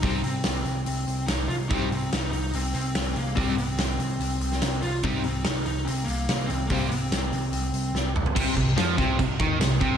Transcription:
<<
  \new Staff \with { instrumentName = "Lead electric guitar" } { \time 4/4 \key c \minor \tempo 4 = 144 ees'8 c'2~ c'8 ees'8 f'8 | ees'8 c'8 ees'8 ees'8 c'8 c'4 bes8 | c'8 c'2. f'8 | ees'8 c'8 ees'8 ees'8 c'8 bes4 c'8 |
bes8 c'2. r8 | r1 | }
  \new Staff \with { instrumentName = "Distorted electric guitar" } { \clef bass \time 4/4 \key c \minor <c g c'>8 r2. r8 | <c g c'>8 r2. r8 | <c g c'>8 r2. r8 | <c g c'>8 r2. r8 |
<c g c'>8 r2. r8 | c8 c8 f8 c8 c8 ees8 c8 c8 | }
  \new Staff \with { instrumentName = "Overdriven electric guitar" } { \clef bass \time 4/4 \key c \minor <c g c'>8 r2. r8 | <c g c'>8 r2. r8 | <c g c'>8 r2. r8 | <c g c'>8 r2. r8 |
<c g c'>8 r2. r8 | c8 c8 f8 c8 c8 ees8 c8 c8 | }
  \new Staff \with { instrumentName = "Distorted electric guitar" } { \clef bass \time 4/4 \key c \minor r1 | r1 | r1 | r1 |
r1 | c8 c8 f8 c8 c8 ees8 c8 c8 | }
  \new Staff \with { instrumentName = "Picked electric bass" } { \clef bass \time 4/4 \key c \minor c,8 c,8 c,8 c,8 c,8 c,8 c,8 c,8 | c,8 c,8 c,8 c,8 c,8 c,8 c,8 c,8 | c,8 c,8 c,8 c,8 c,8 c,8 c,8 c,8 | c,8 c,8 c,8 c,8 c,8 c,8 c,8 c,8 |
c,8 c,8 c,8 c,8 c,8 c,8 c,8 c,8 | c,8 c,8 f,8 c,8 c,8 ees,8 c,8 c,8 | }
  \new DrumStaff \with { instrumentName = "Drums" } \drummode { \time 4/4 <hho bd>8 hho8 <hho sn>8 hho8 hho8 hho8 <hho sn>8 hho8 | <hho bd>8 hho8 <hho sn>8 hho8 hho8 hho8 <hho sn>8 hho8 | <hho bd>8 hho8 <hho sn>8 hho8 hho8 hho16 sn16 <hho sn>8 hho8 | <hho bd>8 hho8 <hho sn>8 hho8 hho8 hho8 <hho sn>8 hho8 |
<hho bd>8 hho8 <hho sn>8 hho8 hho8 hho8 sn8 toml16 tomfh16 | <cymc bd>8 bd8 <cymc sn>8 <bd sn>8 <cymc bd>8 bd8 <cymc sn>8 bd8 | }
>>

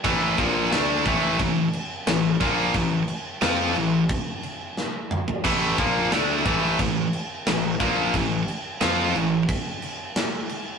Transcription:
<<
  \new Staff \with { instrumentName = "Distorted electric guitar" } { \clef bass \time 4/4 \key a \minor \tempo 4 = 89 <a, e a>8 <bes, f bes>8 <d a d'>8 <a, e a>8 <a, e>8 r8 <a, e>8 <bes, f bes>8 | <a, e>8 r8 <f c' f'>8 <a, e>8 r2 | <a, e a>8 <bes, f bes>8 <d a d'>8 <a, e a>8 <a, e>8 r8 <a, e>8 <bes, f bes>8 | <a, e>8 r8 <f c' f'>8 <a, e>8 r2 | }
  \new Staff \with { instrumentName = "Distorted electric guitar" } { \clef bass \time 4/4 \key a \minor <a, e a>8 <bes, f bes>8 <d a d'>8 <a, e a>8 <a, e>8 r8 <a, e>8 <bes, f bes>8 | <a, e>8 r8 <f c' f'>8 <a, e>8 r2 | <a, e a>8 <bes, f bes>8 <d a d'>8 <a, e a>8 <a, e>8 r8 <a, e>8 <bes, f bes>8 | <a, e>8 r8 <f c' f'>8 <a, e>8 r2 | }
  \new Staff \with { instrumentName = "Picked electric bass" } { \clef bass \time 4/4 \key a \minor a,,8 bes,,8 d,8 a,,8 a,,8 r8 a,,8 bes,,8 | a,,8 r8 f,8 a,,8 r2 | a,,8 bes,,8 d,8 a,,8 a,,8 r8 a,,8 bes,,8 | a,,8 r8 f,8 a,,8 r2 | }
  \new DrumStaff \with { instrumentName = "Drums" } \drummode { \time 4/4 <cymc bd>8 <cymc bd>8 <cymc sn>8 <cymc bd>8 <cymc bd>8 cymc8 <cymc sn>8 <cymc bd>8 | <cymc bd>8 cymc8 <cymc sn>8 cymc8 <cymc bd>8 cymc8 sn8 toml16 tomfh16 | <cymc bd>8 <cymc bd>8 <cymc sn>8 <cymc bd>8 <cymc bd>8 cymc8 <cymc sn>8 <cymc bd>8 | <cymc bd>8 cymc8 <cymc sn>8 cymc8 <cymc bd>8 cymc8 <cymc sn>8 cymc8 | }
>>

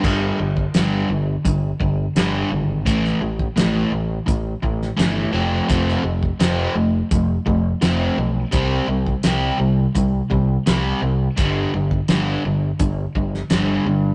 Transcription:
<<
  \new Staff \with { instrumentName = "Overdriven electric guitar" } { \clef bass \time 4/4 \key g \mixolydian \tempo 4 = 85 <g, d g>8 <g, d>8 <g, d g>8 <g, d>8 <g, d>8 <g, d>8 <g, d g>8 <g, d>8 | <a, e a>8 <a, e>8 <a, e a>8 <a, e>8 <a, e>8 <a, e>8 <a, e a>8 <f a c'>8 | <f a c'>8 <f a>8 <f a c'>8 <f a>8 <f a>8 <f a>8 <f a c'>8 <f a>8 | <c g c'>8 <c g>8 <c g c'>8 <c g>8 <c g>8 <c g>8 <c g c'>8 <c g>8 |
<g, d g>8 <g, d>8 <g, d g>8 <g, d>8 <g, d>8 <g, d>8 <g, d g>8 <g, d>8 | }
  \new Staff \with { instrumentName = "Fingered electric bass" } { \clef bass \time 4/4 \key g \mixolydian g,,8 g,,8 g,,8 g,,8 g,,8 g,,8 g,,8 gis,,8 | a,,8 a,,8 a,,8 a,,8 a,,8 a,,8 g,,8 f,,8 | f,,8 f,,8 f,,8 f,,8 f,,8 f,,8 f,,8 b,,8 | c,8 c,8 c,8 c,8 c,8 c,8 c,8 c,8 |
g,,8 g,,8 g,,8 g,,8 g,,8 g,,8 g,,8 g,8 | }
  \new DrumStaff \with { instrumentName = "Drums" } \drummode { \time 4/4 <cymc bd>8. bd16 <hh sn>4 <hh bd>8 bd8 <hh sn>4 | <hh bd>16 sn8 bd16 <hh sn>4 <hh bd>8 bd16 sn16 <hh sn>4 | <hh bd>16 sn8 bd16 <hh sn>4 <hh bd>8 bd8 <hh sn>4 | <hh bd>8. bd16 <hh sn>4 <hh bd>8 bd8 <hh sn>4 |
<hh bd>8. bd16 <hh sn>4 <hh bd>8 bd16 sn16 <hh sn>4 | }
>>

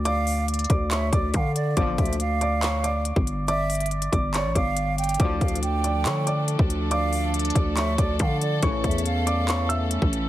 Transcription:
<<
  \new Staff \with { instrumentName = "Grand piano" } { \time 4/4 \key d \minor \tempo 4 = 140 <d'' d'''>4. <d'' d'''>8 <cis'' cis'''>8 <d'' d'''>4. | <d'' d'''>4. <d'' d'''>8 <cis'' cis'''>8 <d'' d'''>4. | <d'' d'''>4. <d'' d'''>8 <cis'' cis'''>8 <d'' d'''>4. | <d'' d'''>4. <d'' d'''>8 <cis'' cis'''>8 <d'' d'''>4. |
<d'' d'''>4. <d'' d'''>8 <cis'' cis'''>8 <d'' d'''>4. | <cis'' cis'''>4. <d'' d'''>8 <cis'' cis'''>8 <e'' e'''>4. | }
  \new Staff \with { instrumentName = "Flute" } { \time 4/4 \key d \minor f''4 r4 e''8 d''8 f''8 d''8 | r8 e''8 f''2 r4 | e''4 r4 d''8 f''4 g''8 | r8 f''8 g''2 r4 |
f''4 r4 e''8 d''8 f''8 d''8 | r8 e''8 f''2 r4 | }
  \new Staff \with { instrumentName = "String section" } { \time 4/4 \key d \minor << { r1 | r1 | r1 | a'1~ |
a'1~ | a'1 | } \\ { r1 | r1 | r1 | <f a d'>1~ |
<f a d'>1 | <e a cis'>1 | } >> }
  \new Staff \with { instrumentName = "Brass ensemble" } { \clef bass \time 4/4 \key d \minor r1 | <bes, d f>4 r2. | r1 | <a, d f>4 r2. |
r1 | <a, cis e>4 r2. | }
  \new Staff \with { instrumentName = "808-style bass" } { \clef bass \time 4/4 \key d \minor d,4. d,4 d,8 d4 | g,,8 d,2~ d,8. g,,8.~ | g,,4. g,,8. a,,16 g,,4. | d,8 d,4. d4~ d16 d,8.~ |
d,4. d,4 d,8 d4 | a,,8 e,2~ e,8. a,,8. | }
  \new DrumStaff \with { instrumentName = "Drums" } \drummode { \time 4/4 hh8 hho8 hh32 hh32 hh32 hh32 <hh bd>8 <hc hh>8 <hh bd>8 <hh bd>8 hh8 | \tuplet 3/2 { <hh bd>16 r16 r16 <hh bd>16 hh16 hh16 } hh8 hh8 <hc hh>8 hh8 hh16 bd16 hh8 | hh8 <hh hho>32 hh32 hh32 hh32 hh16 hh16 <hh bd>8 <hc hh>8 <hh bd>8 hh8 hh32 hh32 hh32 hh32 | \tuplet 3/2 { <hh bd>16 r16 r16 <hh bd>16 hh16 hh16 } hh8 hh8 <hc hh>8 hh8 hh16 bd16 hh8 |
hh8 hho8 hh32 hh32 hh32 hh32 <hh bd>8 <hc hh>8 <hh bd>8 <hh bd>8 hh8 | \tuplet 3/2 { <hh bd>16 r16 r16 <hh bd>16 hh16 hh16 } hh8 hh8 <hc hh>8 hh8 hh16 bd16 hh8 | }
>>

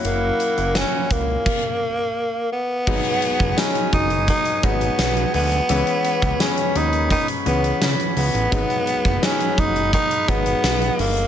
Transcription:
<<
  \new Staff \with { instrumentName = "Woodwind section" } { \time 4/4 \key gis \minor \tempo 4 = 85 <e' ais' fis''>2 r2 | <fis' b' gis''>1 | <cis' cis'' b''>1 | <gis' fis'' b''>1 | }
  \new Staff \with { instrumentName = "Tenor saxophone" } { \time 4/4 \key gis \minor ais4 cis'8 ais2 b8~ | b4 cis'8 dis'8 dis'8 b4 b8~ | b4 cis'8 dis'8 dis'8 b8 r8 b8~ | b4 cis'8 dis'8 dis'8 b4 ais8 | }
  \new Staff \with { instrumentName = "Grand piano" } { \time 4/4 \key gis \minor <fis ais cis' e'>4 r2. | <fis gis b dis'>4 <fis gis b dis'>4~ <fis gis b dis'>16 r16 <fis gis b dis'>4~ <fis gis b dis'>16 r16 | <e gis b cis'>4 <cis gis b cis'>4~ <cis gis b cis'>16 r16 <e gis b cis'>4~ <e gis b cis'>16 r16 | <fis gis b dis'>4 <fis gis b dis'>4~ <fis gis b dis'>16 r16 <fis gis b dis'>4~ <fis gis b dis'>16 r16 | }
  \new Staff \with { instrumentName = "Analog synth bass" } { \clef bass \time 4/4 \key gis \minor fis,,8 r16 fis,,8 r16 cis,8 r2 | gis,,16 r8 fis,,16 r8 fis,,8. r16 gis,,8 b,,8 d,8 | cis,16 r8 cis,16 r8 dis,8. r16 cis,8 cis16 r16 cis,16 a,,16 | gis,,16 r8 fis,,16 r8 fis,,8. r16 gis,,8 b,,8 g,,8 | }
  \new DrumStaff \with { instrumentName = "Drums" } \drummode { \time 4/4 hh8 hh16 hh16 <hh sn>8 <hh bd>8 <cymc bd>4 r4 | <cymc bd>16 hh16 hh16 <hh bd>16 <hh sn tamb>16 hh16 <hh bd>16 hh16 <hh bd>16 hh16 <hh bd>16 hh16 <hh sn tamb>16 hh16 hho16 hh16 | hh16 hh16 hh16 <hh bd>16 <hh sn tamb>16 hh16 hh16 hh16 <hh bd>16 hh16 hh16 hh16 <hh sn tamb>16 hh16 hho16 hh16 | <hh bd>16 hh16 hh16 <hh bd>16 <hh sn tamb>16 hh16 <hh bd>16 hh16 <hh bd>16 hh16 <hh bd>16 hh16 <hh sn tamb>16 hh16 hho16 hh16 | }
>>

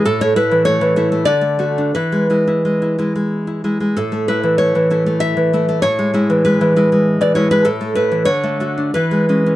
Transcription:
\new Staff \with { instrumentName = "Nylon-string guitar" } { \time 3/4 \key a \major \tempo 4 = 96 << { a'16 cis''16 b'8 cis''4 d''4 | b'2~ b'8 r8 | a'8 b'8 cis''4 e''4 | cis''4 b'4~ b'16 d''16 cis''16 b'16 |
a'8 b'8 cis''4 b'4 | } \\ { a,16 a16 <a e'>16 e16 a16 e16 <a e'>16 a16 d16 a16 <a fis'>16 d'16 | e16 gis16 <gis e'>16 e'16 gis16 e'16 <gis e'>16 gis8 e'16 <gis e'>16 gis16 | a,16 a16 <a e'>16 e16 a16 e16 <a e'>16 a8 e16 <a e'>16 a16 | a,16 gis16 <gis e'>16 e16 gis16 e16 <gis e'>16 gis8 e16 <gis e'>16 gis16 |
a,16 a16 <a e'>16 e16 d16 a16 <a fis'>16 d'16 e16 gis16 <gis cis'>16 cis'16 | } >> }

